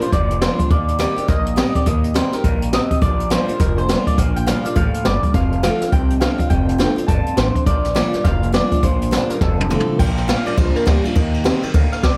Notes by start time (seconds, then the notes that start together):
Already playing: A#2 G3
0.01 D4 F4 C5, muted upright bass stroke, closed hi-hat
0.12 F1 F2 A#2 F3 D5, kick, snare, closed hi-hat
0.30 closed hi-hat
0.41 A#2 F3 G3 A#3 D4 F4 C5, snare, closed hi-hat
0.59 D4 F4, muted upright bass stroke, kick, closed hi-hat
0.70 D#2 D#3 A#3 D5, kick, closed hi-hat
0.88 closed hi-hat
0.99 D#3 G3 A#3 C4 D#4 G4 D5, snare, closed hi-hat
1.17 D#4 G4, muted upright bass stroke, closed hi-hat
1.28 A#1 A#2 D#3 A#3 D#5, kick, snare, closed hi-hat
1.46 closed hi-hat
1.56 D#3 G3 A#3 C4 D#4 G4 D#5, snare, closed hi-hat
1.75 D#4 G4 D5, muted upright bass stroke, kick, closed hi-hat
1.86 D#2 D#3 A#3 D#5, kick, closed hi-hat
2.04 closed hi-hat
2.14 D#3 G3 A#3 C4 D#4 G4 C5, snare, closed hi-hat
2.33 D#4 G4 A#4, muted upright bass stroke, snare, closed hi-hat
2.44 A#1 G2 D#3 A#3, kick, snare, closed hi-hat
2.62 closed hi-hat
2.73 C3 D#3 C4 D#5, snare, closed hi-hat
2.91 muted upright bass stroke, kick, closed hi-hat
3.02 A#1 A#2 F3 D5, kick, closed hi-hat
3.20 closed hi-hat
3.30 A#2 F3 G3 A#3 D4 F4 C5, snare, closed hi-hat
3.48 D4 F4, muted upright bass stroke, closed hi-hat
3.60 F1 F2 A#2 F3 A#4, kick, snare, closed hi-hat
3.78 C5, closed hi-hat
3.89 A#2 F3 G3 A#3 D4 F4, snare, closed hi-hat
4.07 D5, muted upright bass stroke, kick, closed hi-hat
4.18 A#1 A#2 F3 F5, kick, snare, closed hi-hat
4.36 G5, closed hi-hat
4.46 A#2 F3 G3 A#3 D4 F4 F5, snare, closed hi-hat
4.65 D4 F4 D5, muted upright bass stroke, closed hi-hat
4.76 A1 A2 A#2 F3 F5, kick, closed hi-hat
4.94 muted upright bass stroke, closed hi-hat
5.05 G1 G2 A#2 G3 D5, snare, closed hi-hat
5.23 muted upright bass stroke, kick, closed hi-hat
5.34 F1 F2 C3 F5, kick, snare, closed hi-hat
5.52 closed hi-hat
5.63 F2 D3 F3 A3 C4 F4 F5, snare, closed hi-hat
5.80 C4 F4, muted upright bass stroke, snare, closed hi-hat
5.92 C2 F2 C3 G5, kick, closed hi-hat
6.10 closed hi-hat
6.21 F2 D3 F3 A3 C4 F4 F5, snare, closed hi-hat
6.38 C4 F4, kick, closed hi-hat
6.50 F1 F2 C3 G5, kick, closed hi-hat
6.69 closed hi-hat
6.78 F2 D3 F3 A3 C4 F4 G5, snare, closed hi-hat
6.96 C4 F4, muted upright bass stroke, closed hi-hat
7.08 G1 F2 G2 C3 A5, kick, snare, closed hi-hat
7.26 muted upright bass stroke, closed hi-hat
7.37 A1 F2 A2 D3 C5, snare, closed hi-hat
7.55 muted upright bass stroke, kick, closed hi-hat
7.66 A#1 A#2 F3 D5, kick, closed hi-hat
7.85 snare, closed hi-hat
7.95 A#2 F3 G3 A#3 D4 F4 D5, snare, closed hi-hat
8.13 D4 F4, muted upright bass stroke, snare, closed hi-hat
8.24 F1 F2 A#2 F3 F5, kick, snare, closed hi-hat
8.43 closed hi-hat
8.53 A#2 F3 G3 A#3 D4 F4 D5, snare, closed hi-hat
8.71 D4 F4, muted upright bass stroke, kick, closed hi-hat
8.83 A#1 A#2 F3 C5, kick, snare, closed hi-hat
9.01 closed hi-hat
9.11 A#2 F3 G3 A#3 D4 F4, snare, closed hi-hat
9.30 D4 F4 A#4, muted upright bass stroke, snare, closed hi-hat
9.41 F1 F2 C3 A4, kick, snare
9.61 high tom
9.70 F2 D3 F3 A3 C4 F4, mid tom
9.80 mid tom
9.88 muted upright bass stroke
9.99 A#1 A#2 F3 G5, kick, crash
10.18 snare, ride
10.28 A#2 F3 G3 A#3 D4 F4 F5, snare, ride
10.46 D4 F4 D5, muted upright bass stroke, ride
10.57 C2 F2 A#2 F3 C5, kick, ride
10.76 A#4, muted upright bass stroke, snare, ride
10.86 D2 A#2 F3 G3 A#3 D4 F4 G4, kick, snare, ride
11.04 D4 F4, muted upright bass stroke, ride
11.15 D#2 D#3 A#3 D#4, kick, ride
11.34 ride
11.44 D#3 G3 A#3 C4 D#4 G4, snare, ride
11.63 D#4 G4, muted upright bass stroke, ride
11.74 D2 D3 D#3 A#3, kick, snare, ride
11.92 F5, muted upright bass stroke, snare, ride
12.03 C2 C3 D#3 C4 D5, kick, snare, ride